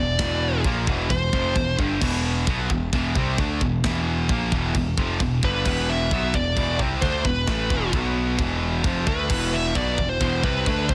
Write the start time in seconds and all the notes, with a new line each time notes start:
Already playing: E1 E2 B2 D5
0.19 E1 E2 B2 E3, kick, snare, china
0.64 A#1 A#2 F3 A#3, kick, china
0.87 E1 E2 B2 E3, kick
1.10 E1 E2 B2 C5, kick, china
1.33 F1 F2 C3 F3, kick
1.55 E1 E2 B2, kick, china
1.79 G1 G2 D3 G3, kick
2.01 E1 E2 B2 E3, kick, china, crash
2.47 B1 B2 F#3 B3, kick, china
2.70 E1 E2 B2, kick
2.93 E1 E2 B2 E3, kick, china
3.15 C2 C3 G3 C4, kick
3.38 D2 D3 A3 D4, kick, china
3.61 E1 E2 B2, kick
3.84 E1 E2 B2 E3, kick, snare, china
4.29 A#1 A#2 F3 A#3, kick, china
4.52 E1 E2 B2 E3, kick
4.75 E1 E2 B2, kick, china
4.98 F1 F2 C3 F3, kick
5.20 E1 E2 B2, kick, china
5.43 G1 G2 D3 G3 B4, kick
5.65 E1 E2 B2 E3, kick, crash, china
5.90 E5
6.11 B1 B2 F#3 B3, kick, china
6.34 E1 E2 B2 D5, kick
6.56 E1 E2 B2 E3, kick, china
6.79 C2 C3 G3 C4, kick
7.02 D2 D3 A3 D4 C5, kick, china
7.25 E1 E2 B2 B4, kick
7.47 A1 A2 E3 A3, kick, snare, china
7.70 E1 E2 B2 E3, kick
7.93 B1 B2 F#3 B3, kick, china
8.39 E1 E2 B2 E3, kick, china
8.84 F1 F2 C3 F3, kick, china
9.07 D2 D3 A3 D4 B4, kick
9.30 E1 E2 B2 E3, kick, crash, china
9.54 E5
9.75 B1 B2 F#3 B3 D5, kick, china
9.98 E1 E2 B2, kick
10.10 C5
10.21 E1 E2 B2 E3, kick, china
10.43 C2 C3 G3 C4 B4, kick
10.66 D2 D3 A3 D4, kick, china
10.89 E1 E2 B2 C5, kick